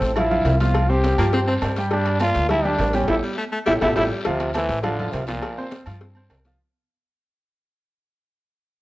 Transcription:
Already playing: A3 C4 A4 C5
0.01 A1, cowbell, high conga, short guiro
0.16 F3 E4 F4 F5, cowbell, high conga, low conga, low agogo, long guiro
0.31 F3 F4 F5, high conga, low conga
0.45 C2, cowbell, high conga, low timbale, low agogo, short guiro
0.59 F3 F4 F5, cowbell, high conga, short guiro
0.74 cowbell, high conga, low agogo, long guiro
0.89 C4 G4 C5, high conga
1.04 cowbell, high conga, low timbale, low agogo, short guiro
1.18 G2 F3 A#3 F4 F5, cowbell, high conga, low agogo, short guiro
1.33 C4 C5, cowbell, high conga, long guiro
1.47 C4 C5, high conga, low agogo
1.61 G2 G3, cowbell, high conga, low timbale, low agogo, short guiro
1.76 G3 G4 G5, cowbell, short guiro
1.91 G3 D4 G4 G5, cowbell, high conga, low agogo, long guiro
2.06 cowbell, high conga, low agogo
2.20 A#3 F4 A#4 D5, cowbell, high conga, low timbale, low agogo, short guiro
2.35 D2, cowbell, high conga, short guiro
2.49 G3 E4 G4 G5, cowbell, high conga, low conga, low agogo, long guiro
2.64 G3 D4 G4 G5, high conga, low conga
2.78 A1, cowbell, high conga, low timbale, low agogo, short guiro
2.93 G3 C#4 G4 G5, cowbell, high conga, short guiro
3.08 A1 E4 G4 A4, cowbell, high conga, high timbale, long guiro
3.23 G3
3.38 A3
3.52 A3
3.66 A1 G3 E4 G4 A4, cowbell, high conga, high timbale, long guiro
3.81 A1 A3 E4 G4 A4, cowbell, high conga, high timbale, long guiro
3.96 A1 G3 E4 G4 A4, cowbell, high conga, high timbale, long guiro
4.25 D2 C3 F3 F4 F5, cowbell, high conga, low agogo, long guiro
4.39 cowbell, high conga, low agogo
4.54 E3 A3 A4 C5, cowbell, high conga, low timbale, low agogo, short guiro
4.69 A1, cowbell, high conga, short guiro
4.82 D3 F3 F4 F5, cowbell, high conga, low conga, low agogo, long guiro
4.99 F3 F4 F5, high conga, low conga
5.11 C2 C3, cowbell, high conga, low timbale, low agogo, short guiro
5.27 A#2 F3 F4 F5, cowbell, high conga, short guiro
5.42 cowbell, high conga, low agogo, long guiro
5.58 C4 C5, high conga
5.71 cowbell, high conga, low timbale, low agogo, short guiro
5.86 G2 F3 F4 F5, cowbell, high conga, low agogo, short guiro
6.00 C4 C5, cowbell, high conga, long guiro
6.15 C4 C5, high conga, low agogo
6.30 C2, cowbell, high conga, low timbale, low agogo, short guiro
6.44 F3 F4 F5, cowbell, high conga, short guiro

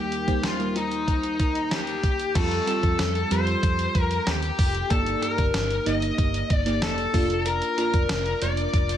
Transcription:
Already playing: D#2 D#3 G3 A#3 D#4 G4 A#4
0.12 closed hi-hat
0.27 G3 A#3 D#4 C5, kick, closed hi-hat
0.43 F4, snare, closed hi-hat
0.59 G3 A#3 D#4 A#4, closed hi-hat
0.76 D#4, closed hi-hat
0.92 closed hi-hat
1.08 kick, closed hi-hat
1.23 closed hi-hat
1.40 kick, closed hi-hat
1.55 closed hi-hat
1.71 G4, snare, closed hi-hat
1.87 closed hi-hat
2.03 kick, closed hi-hat
2.19 closed hi-hat
2.35 F2 G3 C4 F4 A4, kick, closed hi-hat, crash
2.51 closed hi-hat
2.67 G3 C4 F4 A4, closed hi-hat
2.83 F2, kick, closed hi-hat
2.99 F2, snare, closed hi-hat
3.15 closed hi-hat
3.31 F2 G3 C4 F4 G4 C5, closed hi-hat
3.38 A4
3.47 closed hi-hat
3.63 F2, kick, closed hi-hat
3.79 closed hi-hat
3.95 F2, kick, closed hi-hat
4.01 A#4
4.11 closed hi-hat
4.27 D#2 G4, snare, closed hi-hat
4.42 closed hi-hat
4.59 F1, kick, open hi-hat
4.75 closed hi-hat
4.90 G1 G2 A#3 D#4 G4 A4 D5, kick, closed hi-hat
5.06 closed hi-hat
5.23 A#4, closed hi-hat
5.38 G1, kick, closed hi-hat
5.54 G1, snare, closed hi-hat
5.71 closed hi-hat
5.86 G1 A#3 D#4 G4 D#5, closed hi-hat
6.02 closed hi-hat
6.18 G1, kick, closed hi-hat
6.34 closed hi-hat
6.50 G1 D5, kick, closed hi-hat
6.66 A#3 D#4 G4 D5, closed hi-hat
6.82 F1 A4, snare, closed hi-hat
6.98 closed hi-hat
7.13 F1 A#3 D4 F4 D5, kick, open hi-hat
7.30 closed hi-hat
7.46 A#4, closed hi-hat
7.62 closed hi-hat
7.77 A#3 D4 F4 A#4 D5, closed hi-hat
7.94 F1, kick, closed hi-hat
8.09 F1, snare, closed hi-hat
8.26 closed hi-hat
8.41 F1 A#3 D4 F4 D5, closed hi-hat
8.57 closed hi-hat
8.73 F1, kick, closed hi-hat
8.89 closed hi-hat

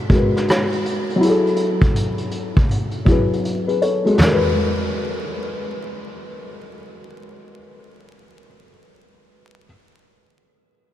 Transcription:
Already playing: G#3 F#4 A#4 B4
0.09 G#3 F#4, kick, closed hi-hat
0.14 A#4 B4
0.36 cross-stick, closed hi-hat
0.48 cross-stick, closed hi-hat
0.72 closed hi-hat
0.85 closed hi-hat
1.10 closed hi-hat
1.16 F#3
1.20 E4, closed hi-hat
1.25 G#4
1.30 A4
1.47 closed hi-hat
1.56 closed hi-hat
1.82 kick, closed hi-hat
1.96 closed hi-hat
2.18 closed hi-hat
2.31 closed hi-hat
2.57 kick, closed hi-hat
2.71 closed hi-hat
2.91 closed hi-hat
3.05 F#3 E4, kick, closed hi-hat
3.10 G#4 B4
3.33 closed hi-hat
3.45 closed hi-hat
3.67 G#4 B4, closed hi-hat
3.82 A4 C#5, closed hi-hat
4.05 G#3 F#4 A4, closed hi-hat
4.15 F#4
4.19 snare, floor tom
4.24 A#4
4.33 B4

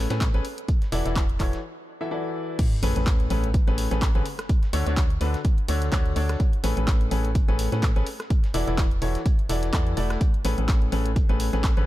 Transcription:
0.10 A2 C#4 G#4 A4 B4, snare, closed hi-hat
0.21 kick, snare, clap, closed hi-hat
0.34 A1 C#4 G#4 A4 B4, closed hi-hat
0.45 closed hi-hat, open hi-hat
0.58 closed hi-hat
0.68 kick, closed hi-hat
0.82 snare, closed hi-hat
0.92 E1 E3 E4 F#4 A4 D5, closed hi-hat, open hi-hat
1.06 E1 E3 E4 F#4 A4 D5, snare, closed hi-hat
1.16 kick, snare, clap, closed hi-hat
1.29 closed hi-hat
1.40 E1 E3 E4 F#4 A4 C#5, kick, clap, closed hi-hat, open hi-hat
1.53 snare, closed hi-hat
2.01 E3 E4 F#4 A4 E5
2.11 E3 E4 F#4 A4 D5
2.59 kick, closed hi-hat, crash, sub drop
2.72 closed hi-hat
2.83 A1 A2 C#4 G#4 A4 B4, closed hi-hat, open hi-hat
2.96 A1 A2 C#4 G#4 A4 B4, closed hi-hat
3.07 kick, snare, clap, closed hi-hat
3.20 closed hi-hat
3.30 A1 A2 C#4 G#4 A4 B4, closed hi-hat, open hi-hat
3.44 closed hi-hat
3.54 kick, closed hi-hat
3.67 A1 A2 C#4 G#4 A4 B4, closed hi-hat
3.78 closed hi-hat, open hi-hat
3.91 A1 A2 C#4 G#4 A4 B4, snare, closed hi-hat
4.02 kick, snare, clap, closed hi-hat
4.15 A1 D3 C#4 G#4 A4 B4, closed hi-hat
4.26 closed hi-hat, open hi-hat
4.39 cross-stick, snare, closed hi-hat
4.49 kick, closed hi-hat
4.63 snare, closed hi-hat
4.73 D2 D3 D4 F#4 A4 C#5, closed hi-hat, open hi-hat
4.86 D2 D3 D4 F#4 A4 C#5, snare, closed hi-hat
4.97 kick, snare, clap, closed hi-hat
5.10 closed hi-hat
5.21 D2 D3 D4 F#4 A4 B4, closed hi-hat, open hi-hat
5.34 snare, closed hi-hat
5.45 kick, closed hi-hat
5.58 closed hi-hat
5.68 D2 D3 D4 F#4 A4 C#5, closed hi-hat, open hi-hat
5.82 snare, closed hi-hat
5.92 D2 D3 D4 F#4 A4 C#5, kick, snare, clap, closed hi-hat
6.06 closed hi-hat
6.16 D2 D4 F#4 A4 C#5, closed hi-hat, open hi-hat
6.29 cross-stick, snare, closed hi-hat
6.40 kick, closed hi-hat
6.53 closed hi-hat
6.64 A1 A2 C#4 G#4 A4 B4, closed hi-hat, open hi-hat
6.77 A1 A2 C#4 G#4 A4 B4, closed hi-hat
6.88 kick, snare, clap, closed hi-hat
7.01 closed hi-hat
7.11 A1 A2 C#4 G#4 A4 B4, closed hi-hat, open hi-hat
7.25 closed hi-hat
7.35 kick, closed hi-hat
7.48 A1 A2 C#4 G#4 A4 B4, closed hi-hat
7.59 closed hi-hat, open hi-hat
7.72 A2 C#4 G#4 A4 B4, snare, closed hi-hat
7.83 kick, snare, clap, closed hi-hat
7.96 A1 C#4 G#4 A4 B4, closed hi-hat
8.07 closed hi-hat, open hi-hat
8.20 cross-stick, snare, closed hi-hat
8.30 kick, closed hi-hat
8.44 snare, closed hi-hat
8.54 E1 E3 E4 F#4 A4 D5, closed hi-hat, open hi-hat
8.67 E1 E3 E4 F#4 A4 D5, snare, closed hi-hat
8.78 kick, snare, clap, closed hi-hat
8.91 closed hi-hat
9.02 E1 E3 E4 F#4 A4 C#5, closed hi-hat, open hi-hat
9.15 snare, closed hi-hat
9.26 kick, closed hi-hat
9.39 closed hi-hat
9.49 E1 E3 E4 F#4 A4 D5, closed hi-hat, open hi-hat
9.63 snare, closed hi-hat
9.73 E2 E3 E4 F#4 A4 D5, kick, snare, clap, closed hi-hat
9.87 closed hi-hat
9.97 E1 A3 E4 F#4 A4 D5, closed hi-hat, open hi-hat
10.10 cross-stick, snare, closed hi-hat
10.21 kick, closed hi-hat
10.34 closed hi-hat
10.45 A1 A2 C#4 G#4 A4 B4, closed hi-hat, open hi-hat
10.58 A1 A2 C#4 G#4 A4 B4, closed hi-hat
10.68 kick, snare, clap, closed hi-hat
10.82 closed hi-hat
10.92 A1 A2 C#4 G#4 A4 B4, closed hi-hat, open hi-hat
11.06 closed hi-hat
11.16 kick, closed hi-hat
11.29 A1 A2 C#4 G#4 A4 B4, closed hi-hat
11.40 closed hi-hat, open hi-hat
11.53 A1 A2 C#4 G#4 A4 B4, snare, closed hi-hat
11.64 kick, snare, clap, closed hi-hat
11.77 A1 D3 C#4 G#4 A4 B4, closed hi-hat

